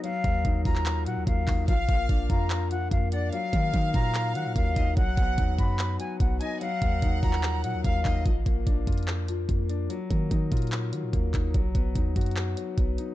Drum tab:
HH |x---x---x---o---x---x---x---o---|x---x---x---x---x---x---x---x---|x---x---x---x---x---x---x---x---|x---x---x---x---x---x---x---x---|
CP |--------------x-x-----------x---|----------------x---------------|----------------x---------------|----------------x---------------|
BD |----o---o---o-----------o---o---|o---o---o---o-----------o-------|----o---o---o-----------o---o---|o---o---o---o-----------o-------|

HH |x---x---x---o---x---x---x---o---|x---x---x---xxxxx---x---x---x---|x---x---x---xxxxx---x---x---x---|x---x---x---xxxxx---x---x---x---|
CP |--------------x-x-----------x---|----------------x---------------|----------------x-----------x---|----------------x---------------|
BD |----o---o---o-----------o---o---|o---o---o---o-----------o-------|----o---o---o-----------o---o---|o---o---o---o-----------o-------|